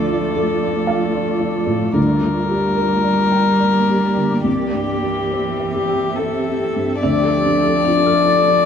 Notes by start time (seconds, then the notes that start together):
Already playing: D2 F3 A3 D4 F4 A4 D5
0.09 F4
0.36 A4
0.63 D5
0.87 F5
1.14 D5
1.41 F4
1.67 A2
1.94 D2 A#3 G4 A#4 D5
1.98 G3
2.21 D3
2.49 G4
2.76 A#4
3.04 D5
3.32 G5
3.60 D5
3.89 G4
4.17 D3
4.44 C2 E3 C4 G4 E5
4.73 G2
5.02 G4
5.33 C5
5.59 E5
5.74 G4
5.89 G5
6.16 A4 E5
6.47 G4
6.76 G2
7.03 D2 F3 A3 D4 F4 A4 D5
7.24 A4
7.46 D4
7.67 A4
7.85 D4 F4
8.06 F4 A4
8.27 F4 A4
8.48 D5